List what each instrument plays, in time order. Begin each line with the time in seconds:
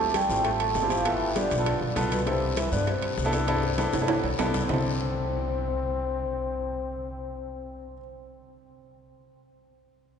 Already playing: upright bass D2, trombone A3, grand piano C4 E4 F4 G4, vibraphone A5
0.14 trombone G3, vibraphone G5, high bongo, high conga, high timbale, short guiro
0.29 upright bass A1, grand piano C4 E4 F4 G4, high conga, short guiro
0.45 trombone A3, vibraphone A5, high bongo, high conga, high timbale, long guiro
0.60 trombone A3, vibraphone A5, high conga, high timbale
0.75 upright bass G1, high bongo, low bongo, high conga, low timbale, short guiro
0.82 grand piano C4 E4 F4 G4
0.89 trombone F3, grand piano C4 E4 F4 G4, vibraphone F5, high timbale, short guiro
1.05 trombone E3, grand piano B3 F4 A4, vibraphone E5, high bongo, high conga, high timbale, long guiro
1.21 high conga
1.35 trombone D3, grand piano B3 F4 G4, vibraphone D5, high bongo, high conga, high timbale, short guiro
1.51 upright bass B1, high bongo, high timbale, short guiro
1.57 grand piano B3 F4 A4
1.66 high bongo, high conga, high timbale, long guiro
1.81 upright bass B1, high bongo, high conga
1.95 upright bass C2, grand piano B3 F4 A4, high bongo, low bongo, high conga, high timbale, low timbale, short guiro
2.11 trombone B2, vibraphone B4, high bongo, high conga, high timbale, short guiro
2.26 trombone C3, grand piano C4 D4 E4 A4, vibraphone C5, high bongo, high conga, high timbale, long guiro
2.42 high conga
2.57 trombone E3, vibraphone E5, high bongo, high conga, high timbale, short guiro
2.71 upright bass G2, trombone D3, grand piano B3 D4 E4 B4, vibraphone D5, high conga, short guiro
2.87 trombone C3, vibraphone C5, high bongo, high conga, high timbale, long guiro
3.02 high conga, high timbale
3.17 upright bass C2, high bongo, low bongo, high conga, short guiro
3.24 grand piano B3 D4 E4 A4
3.32 grand piano B3 D4 E4 A4, high timbale, short guiro
3.47 grand piano B3 D4 E4 A4, high bongo, high conga, high timbale, long guiro
3.63 high bongo, high conga
3.77 grand piano B3 D4 E4 A4, low bongo, high conga, high timbale, short guiro
3.93 upright bass C2, high bongo, high conga, high timbale, short guiro
4.00 grand piano B3 D4 E4 A4
4.08 low bongo, high conga, high timbale, long guiro
4.24 upright bass B1, high conga, high timbale
4.38 upright bass C2, grand piano B3 D4 E4 A4, low bongo, high conga, low timbale, short guiro
4.54 low bongo, high conga, low timbale, short guiro
4.66 upright bass C2, grand piano C4 D4, low bongo, low conga, low timbale, long guiro
4.70 trombone C4, grand piano E4 A4, vibraphone C5